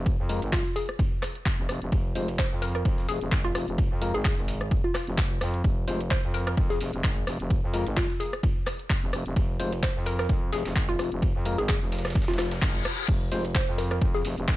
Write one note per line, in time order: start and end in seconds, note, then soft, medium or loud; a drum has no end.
0.00 0.17 F1 loud
0.06 kick loud
0.06 closed hi-hat medium
0.06 ride medium
0.19 0.40 F2 medium
0.29 0.42 G#3 medium
0.29 0.42 F4 medium
0.29 0.42 A#4 loud
0.29 open hi-hat loud
0.29 ride medium
0.42 0.64 G#1 medium
0.42 closed hi-hat medium
0.42 ride soft
0.53 0.73 F4 medium
0.53 kick loud
0.53 snare loud
0.53 clap loud
0.53 closed hi-hat medium
0.53 ride medium
0.65 snare soft
0.76 1.42 G#4 medium
0.76 snare soft
0.76 open hi-hat loud
0.76 ride medium
0.89 cross-stick medium
0.89 closed hi-hat medium
0.99 kick loud
0.99 closed hi-hat medium
0.99 ride medium
1.22 cross-stick medium
1.22 clap soft
1.22 open hi-hat loud
1.22 ride medium
1.35 closed hi-hat medium
1.46 kick loud
1.46 snare loud
1.46 clap loud
1.46 closed hi-hat medium
1.46 ride medium
1.59 1.67 F1 medium
1.69 1.80 F1 loud
1.69 cross-stick medium
1.69 open hi-hat loud
1.69 ride medium
1.82 1.91 F1 medium
1.82 closed hi-hat medium
1.92 2.14 F1 loud
1.92 kick loud
1.92 closed hi-hat medium
1.92 ride medium
2.15 2.50 F1 loud
2.15 2.28 G#3 medium
2.15 2.28 F4 medium
2.15 2.28 C5 loud
2.15 open hi-hat loud
2.15 ride medium
2.28 closed hi-hat medium
2.28 ride soft
2.39 2.60 C5 medium
2.39 kick loud
2.39 snare loud
2.39 clap loud
2.39 closed hi-hat medium
2.39 ride medium
2.52 2.84 F2 medium
2.62 2.70 A#4 medium
2.62 snare medium
2.62 open hi-hat loud
2.62 ride medium
2.75 2.82 A#4 medium
2.75 cross-stick medium
2.75 closed hi-hat medium
2.75 ride soft
2.85 3.07 F2 loud
2.85 kick loud
2.85 closed hi-hat soft
2.85 ride medium
2.98 snare medium
3.09 3.19 F1 medium
3.09 3.29 G#4 medium
3.09 snare soft
3.09 open hi-hat loud
3.09 ride medium
3.21 3.30 F1 medium
3.21 closed hi-hat medium
3.32 3.53 G#1 medium
3.32 kick loud
3.32 snare loud
3.32 clap loud
3.32 closed hi-hat soft
3.32 ride medium
3.45 3.51 F4 medium
3.55 3.66 F1 loud
3.55 3.63 F4 medium
3.55 cross-stick medium
3.55 open hi-hat loud
3.55 ride medium
3.68 3.89 F1 loud
3.68 closed hi-hat medium
3.78 kick loud
3.78 closed hi-hat soft
3.78 ride medium
3.91 4.12 F2 medium
4.02 4.14 G#3 medium
4.02 4.14 F4 medium
4.02 4.14 A#4 loud
4.02 open hi-hat loud
4.02 ride medium
4.14 4.36 G#1 loud
4.14 4.21 G#4 medium
4.14 closed hi-hat medium
4.14 ride soft
4.25 4.33 G#4 medium
4.25 kick loud
4.25 snare loud
4.25 clap loud
4.25 closed hi-hat soft
4.25 ride medium
4.38 4.82 G#1 loud
4.38 snare soft
4.48 snare soft
4.48 open hi-hat loud
4.48 ride medium
4.61 cross-stick medium
4.61 closed hi-hat medium
4.71 kick loud
4.71 closed hi-hat medium
4.71 ride medium
4.84 4.91 F4 medium
4.95 5.03 F4 medium
4.95 cross-stick medium
4.95 clap soft
4.95 open hi-hat loud
4.95 ride medium
5.07 5.39 F1 medium
5.07 closed hi-hat medium
5.18 kick loud
5.18 snare loud
5.18 clap loud
5.18 closed hi-hat soft
5.18 ride medium
5.41 5.63 F2 loud
5.41 cross-stick medium
5.41 open hi-hat loud
5.41 ride medium
5.54 closed hi-hat medium
5.64 5.86 F1 loud
5.64 kick loud
5.64 closed hi-hat medium
5.64 ride medium
5.88 6.22 F1 loud
5.88 6.00 G#3 medium
5.88 6.00 F4 medium
5.88 6.00 C5 loud
5.88 open hi-hat loud
5.88 ride medium
6.00 closed hi-hat medium
6.00 ride soft
6.11 6.32 C5 medium
6.11 kick loud
6.11 snare loud
6.11 clap loud
6.11 closed hi-hat soft
6.11 ride medium
6.24 6.56 F2 medium
6.34 6.42 A#4 medium
6.34 snare medium
6.34 open hi-hat loud
6.34 ride medium
6.47 6.54 A#4 medium
6.47 cross-stick medium
6.47 closed hi-hat medium
6.47 ride soft
6.57 6.79 F2 loud
6.57 kick loud
6.57 closed hi-hat soft
6.57 ride medium
6.70 7.04 G#4 medium
6.70 snare medium
6.81 6.91 F1 medium
6.81 snare soft
6.81 open hi-hat loud
6.81 ride medium
6.93 7.02 F1 medium
6.93 closed hi-hat medium
7.04 7.25 G#1 medium
7.04 kick loud
7.04 snare loud
7.04 clap loud
7.04 closed hi-hat soft
7.04 ride medium
7.27 7.38 F1 loud
7.27 cross-stick medium
7.27 open hi-hat loud
7.27 ride medium
7.40 7.61 F1 loud
7.40 closed hi-hat medium
7.50 kick loud
7.50 closed hi-hat medium
7.50 ride medium
7.63 7.84 F2 medium
7.74 7.86 G#3 medium
7.74 7.86 F4 medium
7.74 7.86 A#4 loud
7.74 open hi-hat loud
7.74 ride medium
7.86 8.08 G#1 loud
7.86 closed hi-hat medium
7.86 ride soft
7.97 8.18 F4 medium
7.97 kick loud
7.97 snare loud
7.97 clap loud
7.97 closed hi-hat medium
7.97 ride medium
8.10 snare soft
8.20 8.86 G#4 medium
8.20 snare soft
8.20 open hi-hat loud
8.20 ride medium
8.33 cross-stick medium
8.33 closed hi-hat medium
8.43 kick loud
8.43 closed hi-hat medium
8.43 ride medium
8.67 cross-stick medium
8.67 clap soft
8.67 open hi-hat loud
8.67 ride medium
8.79 closed hi-hat medium
8.90 kick loud
8.90 snare loud
8.90 clap loud
8.90 closed hi-hat soft
8.90 ride medium
9.03 9.12 F1 loud
9.13 9.24 F1 loud
9.13 cross-stick medium
9.13 open hi-hat loud
9.13 ride medium
9.26 9.35 F1 loud
9.26 closed hi-hat medium
9.36 9.58 F1 loud
9.36 kick loud
9.36 closed hi-hat medium
9.36 ride medium
9.60 9.94 F1 loud
9.60 9.72 G#3 medium
9.60 9.72 F4 medium
9.60 9.72 C5 loud
9.60 open hi-hat loud
9.60 ride medium
9.72 closed hi-hat medium
9.72 ride soft
9.83 10.04 C5 medium
9.83 kick loud
9.83 snare loud
9.83 clap loud
9.83 closed hi-hat medium
9.83 ride medium
9.96 10.28 F2 medium
10.06 10.14 A#4 medium
10.06 open hi-hat loud
10.06 ride medium
10.19 10.26 A#4 medium
10.19 cross-stick medium
10.19 snare soft
10.19 closed hi-hat medium
10.29 10.51 F2 medium
10.29 kick loud
10.29 snare soft
10.29 closed hi-hat medium
10.29 ride medium
10.53 10.63 F1 loud
10.53 10.73 G#4 medium
10.53 snare loud
10.53 open hi-hat medium
10.53 ride medium
10.65 10.74 F1 medium
10.65 snare loud
10.65 closed hi-hat medium
10.65 ride medium
10.76 10.98 G#1 medium
10.76 kick loud
10.76 snare loud
10.76 clap loud
10.76 closed hi-hat medium
10.76 ride medium
10.89 10.95 F4 medium
10.99 11.10 F1 loud
10.99 11.07 F4 medium
10.99 cross-stick medium
10.99 open hi-hat medium
10.99 ride medium
11.12 11.33 F1 loud
11.12 closed hi-hat medium
11.22 kick loud
11.22 closed hi-hat medium
11.22 ride medium
11.35 11.56 F2 medium
11.45 11.58 G#3 medium
11.45 11.59 F4 medium
11.45 11.59 A#4 loud
11.45 open hi-hat loud
11.45 ride medium
11.58 11.80 G#1 medium
11.58 11.65 G#4 medium
11.58 closed hi-hat medium
11.58 ride soft
11.69 11.77 G#4 medium
11.69 kick loud
11.69 snare loud
11.69 clap loud
11.69 closed hi-hat medium
11.69 ride medium
11.82 12.26 F1 medium
11.82 snare soft
11.92 snare medium
11.92 open hi-hat loud
11.92 ride medium
11.99 snare medium
11.99 ride medium
12.05 cross-stick medium
12.05 snare medium
12.05 closed hi-hat medium
12.05 ride medium
12.10 snare medium
12.10 ride medium
12.15 kick loud
12.15 snare medium
12.15 closed hi-hat medium
12.15 ride medium
12.15 reverse cymbal medium
12.22 snare medium
12.22 ride medium
12.28 12.60 F1 loud
12.28 12.35 F4 medium
12.28 snare medium
12.28 ride medium
12.34 snare medium
12.34 ride medium
12.39 12.47 F4 medium
12.39 cross-stick medium
12.39 snare loud
12.39 clap soft
12.39 open hi-hat loud
12.39 ride medium
12.51 snare loud
12.51 closed hi-hat medium
12.51 ride medium
12.62 12.84 G#1 loud
12.62 kick loud
12.62 snare loud
12.62 clap loud
12.62 closed hi-hat medium
12.62 ride medium
12.75 ride medium
12.85 cross-stick medium
12.85 snare loud
12.85 open hi-hat loud
12.85 ride medium
12.98 closed hi-hat medium
13.08 13.30 F1 medium
13.08 kick loud
13.08 closed hi-hat medium
13.08 crash medium
13.08 ride medium
13.32 13.66 F1 loud
13.32 13.45 G#3 medium
13.32 13.45 F4 medium
13.32 13.45 C5 loud
13.32 open hi-hat loud
13.32 ride medium
13.45 closed hi-hat medium
13.45 ride soft
13.55 13.76 C5 medium
13.55 kick loud
13.55 snare loud
13.55 clap loud
13.55 closed hi-hat medium
13.55 ride medium
13.68 14.00 F2 loud
13.78 13.86 A#4 medium
13.78 snare medium
13.78 open hi-hat loud
13.78 ride medium
13.91 13.98 A#4 medium
13.91 cross-stick medium
13.91 closed hi-hat medium
13.91 ride soft
14.01 14.23 F2 medium
14.01 kick loud
14.01 closed hi-hat medium
14.01 ride medium
14.14 14.48 G#4 medium
14.14 snare medium
14.25 14.36 F1 medium
14.25 snare soft
14.25 open hi-hat loud
14.25 ride medium
14.38 14.46 F1 loud
14.38 closed hi-hat medium
14.48 14.57 G#1 medium
14.48 kick loud
14.48 snare loud
14.48 clap loud
14.48 closed hi-hat medium
14.48 ride medium